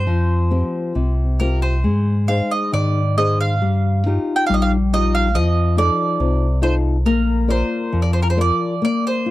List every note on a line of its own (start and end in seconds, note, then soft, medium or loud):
0.00 1.13 C5 medium
0.06 0.63 F2 medium
0.06 0.92 F3 medium
0.51 1.22 C4 soft
0.51 1.22 F4 soft
0.51 1.22 G4 soft
0.95 1.86 C2 medium
0.95 1.82 C3 soft
1.40 1.76 C4 soft
1.40 1.76 F4 soft
1.40 1.76 G4 soft
1.40 1.62 A#4 medium
1.62 2.31 C5 medium
1.84 2.42 G#2 medium
1.84 2.70 G#3 soft
2.28 2.99 D#4 soft
2.28 2.99 G#4 soft
2.28 2.99 C5 soft
2.28 2.51 F5 medium
2.51 2.73 D#5 medium
2.72 3.63 G#2 medium
2.72 3.59 D#3 medium
2.72 3.17 D5 medium
3.17 3.53 D#4 soft
3.17 3.53 G#4 soft
3.17 3.54 C5 medium
3.17 3.38 D#5 medium
3.41 4.33 F5 medium
3.61 4.19 G2 medium
3.61 4.06 G3 medium
4.06 4.75 D#4 soft
4.06 4.76 F4 soft
4.06 4.76 G4 soft
4.36 4.45 G5 medium
4.46 5.37 A#1 medium
4.46 5.32 G3 medium
4.46 4.54 F5 medium
4.54 4.63 D#5 medium
4.62 4.71 F5 medium
4.93 5.27 D#4 medium
4.93 5.27 F4 soft
4.93 5.28 G4 medium
4.93 5.15 D#5 medium
5.15 5.36 F5 medium
5.35 5.90 F2 loud
5.35 6.17 F3 medium
5.35 5.78 D#5 medium
5.77 6.45 D#4 soft
5.77 6.45 F4 soft
5.77 6.46 A4 medium
5.77 6.59 D5 medium
6.20 7.08 C2 medium
6.20 7.03 C3 medium
6.62 6.96 D#4 soft
6.62 6.96 F4 soft
6.62 6.96 A4 medium
6.62 6.74 C5 medium
7.06 7.63 A#1 medium
7.06 7.90 A#3 medium
7.06 8.21 A#4 medium
7.48 8.19 F4 soft
7.48 8.20 A#4 soft
7.48 8.02 C5 medium
7.48 8.20 D5 soft
7.92 8.52 F2 medium
7.92 8.80 F3 medium
8.02 8.11 D5 medium
8.13 8.21 C5 medium
8.22 8.30 A#4 medium
8.30 8.38 C5 medium
8.37 8.73 F4 soft
8.37 8.73 A#4 soft
8.37 8.74 D5 soft
8.41 8.81 D5 medium
8.82 9.31 A#3 medium
8.82 9.06 D5 medium
9.07 9.31 C5 medium
9.26 9.31 F4 soft